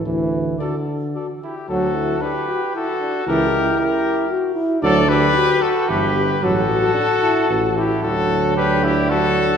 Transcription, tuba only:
X:1
M:3/4
L:1/8
Q:1/4=113
K:D
V:1 name="Tuba" clef=bass
D,,2 z4 | D,,2 z4 | C,,2 z4 | D,,2 z2 G,,,2 |
A,,,2 z2 A,,,2 | D,,6 |]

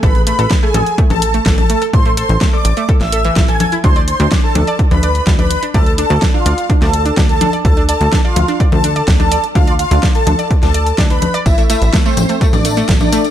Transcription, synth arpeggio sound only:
X:1
M:4/4
L:1/16
Q:1/4=126
K:Ddor
V:1 name="Synth arpeggio sound"
A z A, A z A, A z A, A z A, A z A, A | z A, A z A, A z A, A z A E, E A A E | D d z D d z D d z D d z D d z D | d z D d z D d z D d z D d z D d |
z D d z D d z D d z D d z D d z | D d z D d z D d z D d z D D z d | z A, A, z A, A, z A, A, z A, A, z A, A, z |]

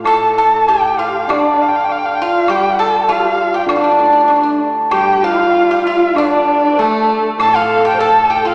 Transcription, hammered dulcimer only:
X:1
M:2/4
L:1/8
Q:1/4=98
K:none
V:1 name="Hammered dulcimer" clef=bass
A,,4 | D,4 | G,4 | D, A, D2 |
G,4 | D,4 | A,,4 |]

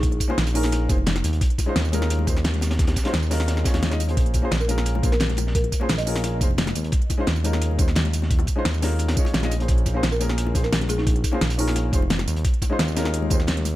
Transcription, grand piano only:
X:1
M:4/4
L:1/16
Q:1/4=174
K:Bbm
V:1 name="Grand piano"
z3 [B,DFAc] z2 [B,DFAB]4 [B,DFAc] z4 z | z3 [A,DEFc] z2 [A,DEFB]4 [A,DEFc] z4 z | z3 [A,DEFc] z2 [A,DEFB]4 [A,DEFd]3 [A,DEFe] z [B,DFAc]- | [B,DFAc]3 [B,DFAc] z2 [B,DFAB]4 [B,DFAc] z4 z |
z3 [B,DFAc] z2 [B,DFAB]4 [B,DFAc] z4 z | z3 [A,DEFc] z2 [A,DEFB]4 [A,DEFc] z4 z | z3 [A,DEFc] z2 [A,DEFB]4 [A,DEFd]3 [A,DEFe] z [B,DFAc]- | [B,DFAc]3 [B,DFAc] z2 [B,DFAB]4 [B,DFAc] z4 z |
z3 [B,DFAc] z2 [B,DFAB]4 [B,DFAc] z4 z | z3 [A,DEFc] z2 [A,DEFB]4 [A,DEFc] z4 z |]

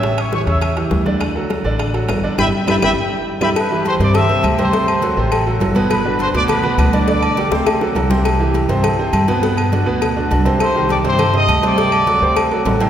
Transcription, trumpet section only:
X:1
M:4/4
L:1/8
Q:1/4=204
K:G
V:1 name="Trumpet section"
[ee'] [^c^c'] [cc'] [ee']2 z3 | z8 | [egb] z [egb] [egb] z3 [egb] | [Bb]2 [cc'] [dd'] [ee']2 z [cc']- |
[cc']4- [cc'] z3 | [Bb]2 [cc'] [dd'] [Bb]2 z [dd']- | [dd']4- [dd'] z3 | z8 |
z8 | [cc']2 [dd'] [cc']2 [_e_e']2 [dd']- | [dd']6 z2 |]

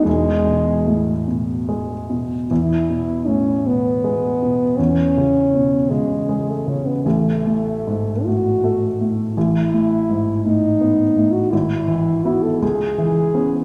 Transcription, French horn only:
X:1
M:6/8
L:1/16
Q:3/8=53
K:E
V:1 name="French horn"
G,6 z6 | E4 C2 B,6 | C6 G,3 A, C B, | A,6 F4- F z |
E6 D4- D F | E4 F A G6 |]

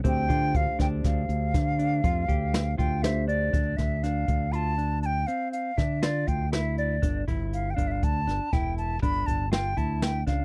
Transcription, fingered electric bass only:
X:1
M:7/4
L:1/16
Q:1/4=120
K:Dm
V:1 name="Fingered electric bass" clef=bass
D,,2 D,2 D,, z D,,2 D,,2 D,,2 D,4 F,,2 D,,4 D,,6 | D,,2 D,,4 D,,8 z4 D,4 D,,6 | G,,,2 G,,,4 G,,,2 D,,2 G,,, z E,,,4 G,,,2 G,,,4 D,,4 ^C,,2 |]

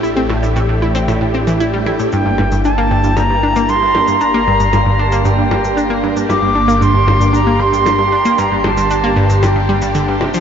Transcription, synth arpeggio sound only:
X:1
M:4/4
L:1/16
Q:1/4=115
K:Gdor
V:1 name="Synth arpeggio sound" clef=bass
E C A,, A,, A,, A,, E C A,, A,, C E, E G, E A,, | G,, G,, G,, G,, D B, G,, G,, G,, G,, D B, G,, G,, G,, G,, | D B, G,, G,, G,, G,, D B, G,, G,, G,, G,, D B, G,, G,, | G,, G,, D B, G,, G,, G,, G,, D B, G,, G,, G,, G,, D B, |
G,, G,, G,, G,, D B, G,, G,, G,, G,, G, G,, D, G,, C, F, |]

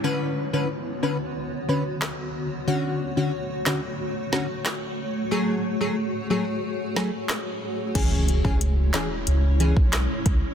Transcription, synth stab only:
X:1
M:4/4
L:1/16
Q:1/4=91
K:C#phr
V:1 name="Synth stab"
[D,CB]3 [D,CB] z2 [D,CB] z3 [D,CB] z4 z | [D,CF]3 [D,CF] z2 [D,CF] z3 [D,CF] z4 z | [F,A,G]3 [F,A,G] z2 [F,A,G] z3 [F,A,G] z4 z | [E,CG]3 [E,CG] z2 [E,CG] z3 [E,CG] z4 z |]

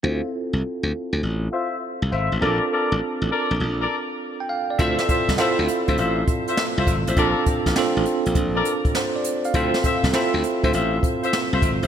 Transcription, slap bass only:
X:1
M:4/4
L:1/16
Q:"Swing 16ths" 1/4=101
K:Dm
V:1 name="Slap bass" clef=bass
D,, z2 C,, z D,, z D,, A,,,2 z3 C,, ^G,,, A,,, | B,,, z2 A,,, z A,,, z B,,, B,,,2 z6 | D,, z2 C,, z D,, z D,, A,,,2 z3 C,, ^G,,, A,,, | B,,, z2 A,,, z A,,, z B,,, B,,,2 z6 |
D,, z2 C,, z D,, z D,, A,,,2 z3 C,, ^G,,, A,,, |]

